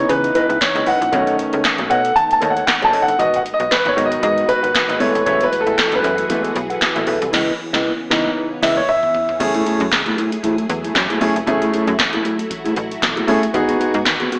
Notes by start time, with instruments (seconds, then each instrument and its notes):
Already playing: string machine C#3 E3 B3 D#4, grand piano E3 B3 D#4 C#5
0.09 fm bass C#3, grand piano B4, kick, closed hi-hat
0.23 muted clean electric guitar stroke, closed hi-hat
0.35 clean electric guitar E4 B4 D#5, grand piano B4, closed hi-hat
0.49 fm bass C#2, clean electric guitar E4 B4, closed hi-hat
0.61 grand piano C#5, muted clean electric guitar stroke, kick, snare, clap, closed hi-hat
0.75 fm bass C#2, clean electric guitar E4 B4 D#5, closed hi-hat
0.86 fm bass A1, clean electric guitar E4 B4 D#5, grand piano F#5, open hi-hat
1.01 fm bass A#1, muted clean electric guitar stroke, closed hi-hat
1.12 fm bass B1, grand piano D#3 A3 C#4, string machine A3, clean electric guitar A4 C#5 D#5, kick, closed hi-hat
1.27 closed hi-hat
1.38 muted clean electric guitar stroke, closed hi-hat
1.53 fm bass C#2, clean electric guitar A4 C#5 D#5, closed hi-hat
1.64 muted clean electric guitar stroke, kick, snare, clap, closed hi-hat
1.78 fm bass B1, muted clean electric guitar stroke, closed hi-hat
1.89 fm bass B2, clean electric guitar A4 C#5 D#5, grand piano F#5, closed hi-hat
2.04 muted clean electric guitar stroke, closed hi-hat
2.15 grand piano A5, muted clean electric guitar stroke, kick, closed hi-hat
2.30 grand piano A5, muted clean electric guitar stroke, closed hi-hat
2.41 fm bass D#2, clean electric guitar A4 C#5 D#5, closed hi-hat
2.50 grand piano F#5
2.56 clean electric guitar A4 C#5 F#5, closed hi-hat
2.67 grand piano F#5, muted clean electric guitar stroke, kick, snare, clap, closed hi-hat
2.81 fm bass B1, clean electric guitar A4 C#5 D#5, grand piano A5, closed hi-hat
2.92 fm bass F#1, clean electric guitar A4 C#5 D#5, open hi-hat
3.02 grand piano F#5
3.07 fm bass G1, muted clean electric guitar stroke, closed hi-hat
3.19 fm bass G#1, string machine G#3 F#4 B4, clean electric guitar F#4 B4 D#5, grand piano D#5, kick, closed hi-hat
3.34 grand piano F#5, closed hi-hat
3.45 muted clean electric guitar stroke, closed hi-hat
3.54 grand piano D#5
3.59 fm bass B1, clean electric guitar F#4 B4 D#5, closed hi-hat
3.71 grand piano B4, muted clean electric guitar stroke, kick, snare, clap, closed hi-hat
3.85 fm bass G#1, grand piano C#5, muted clean electric guitar stroke, closed hi-hat
3.96 fm bass G#2, grand piano D#3 F#3 B3, clean electric guitar F#4 B4 D#5, closed hi-hat
4.06 grand piano D#5
4.11 muted clean electric guitar stroke, closed hi-hat
4.23 fm bass G#2, grand piano D#5, muted clean electric guitar stroke, kick, closed hi-hat
4.37 muted clean electric guitar stroke, closed hi-hat
4.48 clean electric guitar F#4 B4 D#5, grand piano B4, closed hi-hat
4.63 fm bass G#1, clean electric guitar F#4 B4 F#5, closed hi-hat
4.74 muted clean electric guitar stroke, kick, snare, clap, closed hi-hat
4.89 fm bass G#1, clean electric guitar F#4 B4 D#5, closed hi-hat
5.00 fm bass F#1, grand piano E3 G#3 A3 B3 C#5, string machine E3 F#3 F#4 G#4, clean electric guitar A4 B4 E5, open hi-hat
5.15 fm bass F1, muted clean electric guitar stroke, closed hi-hat
5.26 fm bass F#1, clean electric guitar A4 B4 E5, grand piano C#5, kick, closed hi-hat
5.41 grand piano B4, closed hi-hat
5.52 muted clean electric guitar stroke, closed hi-hat
5.61 grand piano A4
5.66 fm bass A1, clean electric guitar A4 B4 E5, closed hi-hat
5.78 grand piano A4, kick, snare, clap, closed hi-hat
5.92 fm bass F#1, grand piano B4, muted clean electric guitar stroke, closed hi-hat
6.03 fm bass F#2, clean electric guitar A4 B4 E5, closed hi-hat
6.18 muted clean electric guitar stroke, closed hi-hat
6.30 grand piano E3 G#3 A3 B3, clean electric guitar A4 B4 E5, kick, closed hi-hat
6.44 muted clean electric guitar stroke, closed hi-hat
6.56 fm bass B1, muted clean electric guitar stroke, closed hi-hat
6.70 clean electric guitar A4 B4 F#5, closed hi-hat
6.81 muted clean electric guitar stroke, kick, snare, clap, closed hi-hat
6.96 fm bass A1, clean electric guitar A4 B4 E5, closed hi-hat
7.07 fm bass B1, clean electric guitar A4 B4 E5, open hi-hat
7.22 fm bass C2, muted clean electric guitar stroke, closed hi-hat
7.33 fm bass C#2, string machine C#3 B3 C#4, clean electric guitar E4 B4 D#5, kick, snare, crash
7.73 fm bass C#2, clean electric guitar E4 B4 D#5, kick, snare
8.10 fm bass C#2, grand piano E3 B3 D#4, clean electric guitar E4 B4 D#5, kick, snare
8.62 fm bass C#2, clean electric guitar E4 B4 D#5, grand piano E5, kick, snare, crash
8.77 grand piano C#5
8.89 grand piano E5, mid tom
9.03 mid tom
9.14 floor tom
9.29 floor tom
9.40 fm bass F#1, string machine F#3 A3 E4 G#4, grand piano A3 C#4 E4 G#4, kick, closed hi-hat, crash
9.54 clean electric guitar A3 E4 G#4, closed hi-hat
9.66 clean electric guitar A3 E4 G#4, closed hi-hat
9.80 fm bass F#2, muted clean electric guitar stroke, closed hi-hat
9.92 fm bass C#2, muted clean electric guitar stroke, kick, snare, clap, closed hi-hat
10.06 clean electric guitar A3 E4 G#4, closed hi-hat
10.17 clean electric guitar A3 E4 G#4, closed hi-hat
10.32 muted clean electric guitar stroke, closed hi-hat
10.43 clean electric guitar A3 E4 G#4, kick, closed hi-hat
10.58 muted clean electric guitar stroke, closed hi-hat
10.69 fm bass E2, muted clean electric guitar stroke, closed hi-hat
10.84 clean electric guitar A3 E4 G#4, closed hi-hat
10.95 fm bass F#2, kick, snare, clap, closed hi-hat
11.10 clean electric guitar A3 E4 G#4, closed hi-hat
11.21 fm bass F#1, grand piano A3 C#4 E4 G#4, clean electric guitar A3 E4 A4, open hi-hat
11.36 fm bass F1, muted clean electric guitar stroke, closed hi-hat
11.47 fm bass F#1, grand piano A3 C#4 E4 G#4, string machine F#4, muted clean electric guitar stroke, kick, closed hi-hat
11.62 clean electric guitar A3 E4 G#4, closed hi-hat
11.73 clean electric guitar A3 E4 G#4, closed hi-hat
11.87 fm bass F#2, muted clean electric guitar stroke, closed hi-hat
11.99 fm bass F#1, muted clean electric guitar stroke, kick, snare, clap, closed hi-hat
12.13 clean electric guitar A3 E4 G#4, closed hi-hat
12.25 clean electric guitar A3 E4 G#4, closed hi-hat
12.39 muted clean electric guitar stroke, closed hi-hat
12.50 muted clean electric guitar stroke, kick, closed hi-hat
12.64 clean electric guitar A3 E4 G#4, closed hi-hat
12.76 fm bass A1, closed hi-hat
12.91 muted clean electric guitar stroke, closed hi-hat
13.02 fm bass B1, muted clean electric guitar stroke, kick, snare, clap, closed hi-hat
13.17 clean electric guitar A3 E4 G#4, closed hi-hat
13.27 fm bass G1, grand piano A3 C#4 E4 G#4, clean electric guitar A3 E4 A4, open hi-hat
13.43 muted clean electric guitar stroke, closed hi-hat
13.54 fm bass G#1, string machine G#3 B4, grand piano B3 D#4 F#4 G#4, kick, closed hi-hat
13.68 clean electric guitar B3 F#4 G#4, closed hi-hat
13.80 clean electric guitar B3 F#4 G#4, closed hi-hat
13.94 fm bass G#2, muted clean electric guitar stroke, closed hi-hat
14.06 fm bass D#2, muted clean electric guitar stroke, kick, snare, clap, closed hi-hat
14.20 clean electric guitar B3 F#4 G#4, closed hi-hat
14.32 clean electric guitar B3 F#4 G#4, closed hi-hat